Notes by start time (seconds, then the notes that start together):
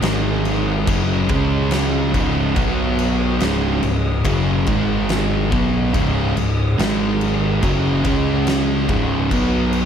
0.02 G#1 G#2 D#3 G#3 D#4 A#4, snare, crash
0.45 crash
0.87 F#1 F#2 C#3 F#3 C#4 G#4 D#5, kick, crash
1.29 C#2 C#3 G#3 C#4, kick, crash
1.71 snare, crash
2.14 C#1 C#2 G#2 C#3, kick, crash
2.56 B1 B2 F#3 B3 F#4 C#5, kick, crash
2.99 crash
3.40 C#1 C#2 G#2 C#3 C#4 G#4 D#5, snare, crash
3.83 C#1 C#2 G#2, crash
4.24 F#1 F#2 C#3 F#3, kick, crash
4.67 G#1 G#2 D#3 G#3 D#4 A#4, kick, crash
5.09 snare, crash
5.51 B1 B2 F#3 B3 C#4 G#4 D#5, kick, crash
5.94 C#1 C#2 G#2 C#3, kick, crash
6.36 C#1 C#2 G#2, crash
6.79 G#1 G#2 D#3 G#3 D#4 A#4, snare, crash
7.21 crash
7.62 F#1 F#2 C#3 F#3 C#4 G#4 D#5, kick, crash
8.04 C#2 C#3 G#3 C#4, kick, crash
8.47 snare, crash
8.89 C#1 C#2 G#2 C#3, kick, crash
9.29 B1 B2 F#3 B3 F#4 C#5, kick, crash
9.33 B3
9.73 crash